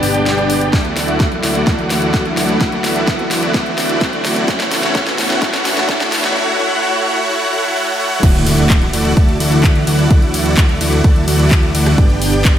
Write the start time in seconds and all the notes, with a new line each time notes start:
Already playing: B2 D3 G3 D4 G4, riser
0.03 G1 B3 D4 G4 D5 G5, open hi-hat
0.15 closed hi-hat
0.26 snare, closed hi-hat
0.38 cross-stick, closed hi-hat
0.50 open hi-hat
0.61 closed hi-hat
0.73 D2 D3 E3 F#3 A3 E4 F#4 D5 F#5, kick, snare, closed hi-hat
0.85 closed hi-hat
0.96 snare, open hi-hat
1.08 closed hi-hat
1.20 kick, snare, closed hi-hat
1.32 closed hi-hat
1.43 D2 A3 E4 F#4 D5 F#5, snare, open hi-hat
1.55 closed hi-hat
1.67 D2 A3 E4 F#4 D5 F#5, kick, snare, closed hi-hat
1.79 closed hi-hat
1.90 snare, open hi-hat
2.02 closed hi-hat
2.14 kick, snare, closed hi-hat
2.25 closed hi-hat
2.37 D2 A3 E4 F#4 D5 F#5, snare, open hi-hat
2.49 closed hi-hat
2.61 D2 A3 E4 F#4 D5 F#5, kick, snare, closed hi-hat
2.72 closed hi-hat
2.84 snare, open hi-hat
2.96 closed hi-hat
3.07 kick, snare, closed hi-hat
3.19 closed hi-hat
3.31 D2 A3 E4 F#4 D5 F#5, snare, open hi-hat
3.43 closed hi-hat
3.54 D2 A3 E4 F#4 D5 F#5, kick, snare, closed hi-hat
3.66 closed hi-hat
3.78 snare, open hi-hat
3.89 closed hi-hat
4.01 kick, snare, closed hi-hat
4.13 closed hi-hat
4.25 D2 A3 E4 F#4 D5 F#5, snare, open hi-hat
4.36 closed hi-hat
4.48 A1 C#3 A3 B3 E4 F#4 C#5 F#5, kick, snare, closed hi-hat
4.60 snare, closed hi-hat
4.71 snare, open hi-hat
4.83 snare, closed hi-hat
4.95 A1 A3 E4 F#4 C#5 F#5, kick, snare, closed hi-hat
5.07 snare, closed hi-hat
5.18 snare, open hi-hat
5.30 snare, closed hi-hat
5.42 A1 A3 E4 F#4 C#5 F#5, kick, snare, closed hi-hat
5.53 snare, closed hi-hat
5.65 snare, open hi-hat
5.77 snare, closed hi-hat
5.89 A1 A3 E4 F#4 C#5 F#5, kick, snare, closed hi-hat
6.00 snare, closed hi-hat
6.12 snare, open hi-hat
6.24 snare, closed hi-hat
6.35 A3 E4 F#4 C#5 F#5
6.59 A3 E4 F#4 C#5 F#5
6.82 A3 E4 F#4 C#5 F#5
7.06 A3 E4 F#4 C#5 F#5
7.29 A3 E4 F#4 C#5 F#5
7.53 A3 E4 F#4 C#5 F#5
7.76 A3 E4 F#4 C#5 F#5
8.00 A3 E4 F#4 C#5 F#5
8.23 D2 D3 E3 F#3 A3 E4 F#4 D5 F#5, kick, closed hi-hat, ride, crash, impact
8.35 closed hi-hat
8.47 open hi-hat, ride
8.58 closed hi-hat
8.70 kick, clap, closed hi-hat, ride
8.82 closed hi-hat
8.93 D2 A3 E4 F#4 D5 F#5, open hi-hat, ride
9.05 closed hi-hat
9.17 D2 A3 E4 F#4 D5 A5, kick, closed hi-hat, ride
9.29 closed hi-hat
9.40 D2 A3 E4 F#4 D5 F#5, open hi-hat, ride
9.52 closed hi-hat
9.64 kick, clap, closed hi-hat, ride
9.75 closed hi-hat
9.87 D2 A3 E4 F#4 D5 F#5, open hi-hat, ride
9.99 closed hi-hat
10.11 D2 A3 E4 F#4 D5 F#5, kick, closed hi-hat, ride
10.22 closed hi-hat
10.34 open hi-hat, ride
10.46 closed hi-hat
10.57 kick, clap, closed hi-hat, ride
10.69 closed hi-hat
10.81 D2 A3 E4 F#4 D5 F#5, open hi-hat, ride
10.93 closed hi-hat
11.04 D2 A3 E4 F#4 D5 A5, kick, closed hi-hat, ride
11.16 closed hi-hat
11.28 D2 A3 E4 F#4 D5 F#5, open hi-hat, ride
11.39 closed hi-hat
11.51 kick, clap, closed hi-hat, ride
11.63 closed hi-hat
11.75 D2 A3 E4 F#4 D5 F#5, open hi-hat, ride
11.86 cross-stick, closed hi-hat
11.98 G1 B2 G3 B3 D4 G4 D5 G5, kick, closed hi-hat, ride
12.10 closed hi-hat
12.22 open hi-hat, ride
12.33 closed hi-hat
12.45 kick, clap, closed hi-hat, ride